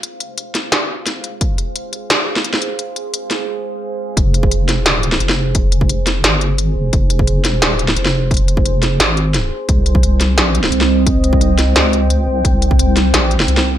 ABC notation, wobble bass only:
X:1
M:4/4
L:1/8
Q:1/4=174
K:Fm
V:1 name="Wobble bass" clef=bass
F,,,4 G,,,3 F,,, | F,,,4 E,,,2 F,,,2- | F,,,4 z4 | F,,,4 E,,,2 F,,,2- |
F,,,4 G,,,3 F,,, | F,,,4 E,,,2 F,,,2- | F,,,4 A,,,3 z | C,,4 B,,,2 C,,2- |
C,,4 D,,3 C,, | C,,4 B,,,2 C,,2 |]